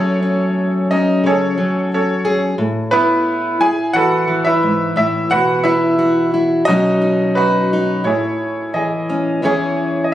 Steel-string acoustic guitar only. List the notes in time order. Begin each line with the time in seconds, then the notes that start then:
Already playing: F#2 F#3 A3 C#4
0.22 C#4
0.91 C#4
1.24 C#3
1.58 F#3
2.25 G#4
2.58 A2
2.93 E4
3.61 E4
3.94 E3
4.28 E3
4.63 G#2
4.96 A2
5.30 B2
5.65 E4
5.99 F#4
6.34 E4
6.67 B2 F#3 C#4 D#4 F#4
7.02 D#4
7.37 F#4
7.73 D#4
8.04 A2
8.74 E3
9.10 C#4
9.42 E2 E3 C#4 E4 G#4